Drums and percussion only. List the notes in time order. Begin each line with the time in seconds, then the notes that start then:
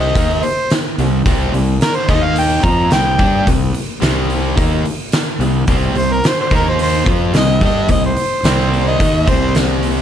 0.15 kick, open hi-hat
0.43 open hi-hat
0.70 snare, open hi-hat
0.99 open hi-hat
1.26 kick, open hi-hat
1.54 open hi-hat
1.81 snare, open hi-hat
2.09 kick, open hi-hat
2.36 open hi-hat
2.63 kick, open hi-hat
2.91 snare, open hi-hat
3.19 kick, open hi-hat
3.47 kick, open hi-hat
3.74 open hi-hat
4.02 snare, open hi-hat
4.30 open hi-hat
4.58 kick, open hi-hat
4.85 open hi-hat
5.12 snare, open hi-hat
5.41 open hi-hat
5.67 kick, open hi-hat
5.95 open hi-hat
6.24 snare, open hi-hat
6.51 kick, open hi-hat
6.79 open hi-hat
7.06 kick, open hi-hat
7.34 snare, open hi-hat
7.61 kick, open hi-hat
7.88 kick, open hi-hat
8.17 open hi-hat
8.44 snare, open hi-hat
8.74 open hi-hat
9.00 kick, open hi-hat
9.27 kick, open hi-hat
9.55 snare, open hi-hat
9.83 open hi-hat